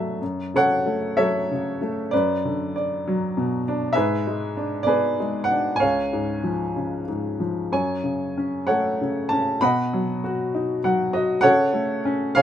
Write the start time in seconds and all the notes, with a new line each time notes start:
Already playing: B2 F#3 A3 D4 F#4 A4 D5 E5 A5
0.21 F#2
0.54 C#3 A4 C#5 F#5
0.86 A3
1.17 F#3 A4 C#5 E5
1.51 C#3
1.81 A3
2.11 F#2 B4 D5
2.45 D3
2.76 D5
3.07 F#3
3.37 B2
3.68 D4
3.93 G#4 B4 E5
3.97 G#2
4.27 G#3
4.57 D4
4.83 B3 G#4 B4 D5
5.20 G#3
5.44 F#5
5.51 D4
5.76 F5 G#5
5.80 C#2 C#5
6.13 G#2
6.43 F3
6.76 C#3
7.08 G#2
7.40 F3
7.72 F#2 C#5 G#5
8.03 C#3
8.37 C#4
8.67 A3 A4 C#5 F#5
9.01 C#3
9.29 C#4 A5
9.61 B2 D#5 F#5 B5
9.93 F#3
10.24 F#4
10.54 D#4
10.84 F#3 F#5
11.13 F#4 D#5
11.41 C#3 A4 C#5 F#5
11.73 A3
12.05 C#4
12.35 C#3 G#4 C#5 F5